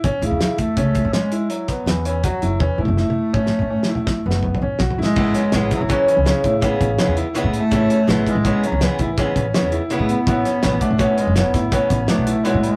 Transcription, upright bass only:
\new Staff \with { instrumentName = "Upright bass" } { \clef bass \time 7/4 \key a \major \tempo 4 = 164 a,,16 r16 a,16 e,4~ e,16 cis,8. a,8 r4. r16 e,4. fis,,8 | e,16 r16 a,16 fis,,8 r8. a,,8 r16 a,8 r4 r16 fis,,4 a,,8 b,,8 a,,8 | a,,8 r8 a,,8 r16 a,,8 r8 cis,8 r16 a,4 a,,8 r16 e,8 r8 a,8 r16 | a,,8 r8 a,,8 r16 a,,8 r8 cis,8 r16 a,4 a,,8 r16 e,8 r8 a,8 r16 |
a,,8 r8 a,,8 r16 a,,8 r8 fis,,8 r16 a,4 a,,8 r16 b,,8 r8 a,8 r16 | }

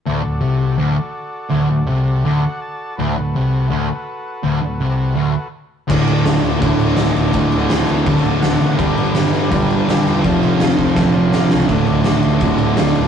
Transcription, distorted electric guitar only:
\new Staff \with { instrumentName = "Distorted electric guitar" } { \clef bass \time 4/4 \key d \major \tempo 4 = 166 d,8 d,8 c4 d,8 r4. | d,8 d,8 c4 d,8 r4. | d,8 d,8 c4 d,8 r4. | d,8 d,8 c4 d,8 r4. |
<d, a, d>2 <d, a, d>2 | <d, a, d>2 <d, a, d>2 | <g, d g>2 <g, d g>2 | <f, c f>2 <f, c f>2 |
<d, a, d>2 <d, a, d>2 | }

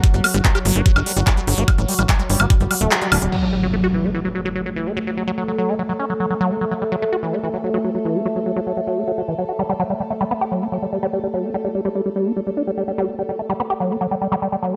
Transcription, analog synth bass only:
\new Staff \with { instrumentName = "Analog synth bass" } { \clef bass \time 4/4 \key fis \phrygian \tempo 4 = 146 r16 g,,16 r16 g,,16 r8 g,,16 g,,16 r16 g,,16 r16 g,,16 r8 g,,16 g,,16 | r16 a,,16 r16 a,,16 r8 g,,16 g,,16 r16 g,,16 r16 d,,16 r8 d,,16 d,,16 | r1 | r1 |
r1 | r1 | r1 | r1 |
r1 | }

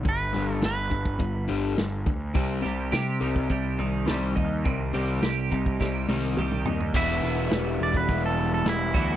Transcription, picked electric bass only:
\new Staff \with { instrumentName = "Picked electric bass" } { \clef bass \time 4/4 \key c \lydian \tempo 4 = 104 g,,8 g,,8 g,,8 g,,8 g,,8 g,,8 g,,8 d,8 | c,8 c,8 c8 c,8 c,8 c,8 c,8 ees,8 | c,8 c,8 c,8 c,8 c,8 c,8 c,8 ees,8 | e,,8 e,,8 e,,8 e,,8 e,,4 e,,8 d,8 | }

